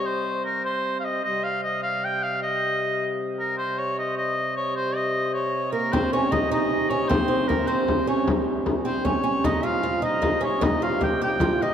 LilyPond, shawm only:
\new Staff \with { instrumentName = "Shawm" } { \time 6/8 \key c \phrygian \tempo 4. = 102 c''4 bes'8 c''8.~ c''32 f''32 ees''8 | ees''8 f''8 ees''8 f''8 g''8 f''8 | ees''4.~ ees''16 r8. bes'8 | c''8 des''8 ees''8 ees''4 des''8 |
c''8 ees''4 des''4 bes'8 | c''8 des''8 ees''8 ees''4 des''8 | c''4 bes'8 c''4 des''8 | r4. c''8 des''4 |
ees''8 f''4 ees''4 des''8 | ees''8 f''8 g''8 g''4 ees''8 | }